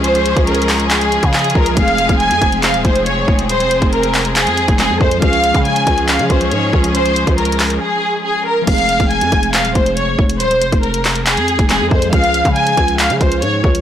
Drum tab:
CC |------------------------------------------------------------------------------------------------|------------------------------------------------------------------------------------------------|------------------------------------------------------------------------------------------------|------------------------------------------------------------------------------------------------|
HH |x-----x-----x-----x-----x---x---x---o-----x-----x-----x-----x-----x-----x--x--x--x--------x-----|x-----x-----x-----x-----x-----x-----x-----x-----x-----x-----x-----x-----x-----------------x-----|x-----x-----x-----x-----x-----x-----o-----x-----x-----x-----x-----x-----x-----------------x-----|x-----x-----x-----x-----x-----x-----x-----x-----x-----x-----x-----x-----x-----------------x-----|
CP |------------------------------------x-----------x-----------------------x-----------------------|------------------------------------------------x-----------------------------------------------|------------------------------------x-----------x-----------------------x-----------------------|------------------------------------------------x-----------------------------------------------|
BD |------------------o-----------------------------------------------o-----------------o-----------|o-----------------o-----------------o-----------------------o-----------------------o-----------|------------------o-----------------------------------------------o-----------------o-----------|o-----------------o-----------------o-----------------------o-----------------------o-----------|

CC |------------------------------------------------------------------------------------------------|x-----------------------------------------------------------------------------------------------|------------------------------------------------------------------------------------------------|------------------------------------------------------------------------------------------------|
HH |x-----x-----x-----x-----x---x---x---o-----x-----------------------------------------------------|x-----x-----x-----x-----x-----x-----x-----x-----x-----x-----x-----x-----x-----------------x-----|x-----x-----x-----x-----x-----x-----o-----x-----x-----x-----x-----x-----x-----------------x-----|x-----x-----x-----x-----x-----x-----x-----x-----x-----x-----x-----x-----x-----------------x-----|
CP |------------------------------------x-----------------------------------------------------------|------------------------------------------------x-----------------------------------------------|------------------------------------x-----------x-----------------------x-----------------------|------------------------------------------------x-----------------------------------------------|
BD |------------------o-----------------------------------------------------------------------------|o-----------------o-----------------o-----------------------o-----------------------o-----------|------------------o-----------------------------------------------o-----------------o-----------|o-----------------o-----------------o-----------------------o-----------------------o-----------|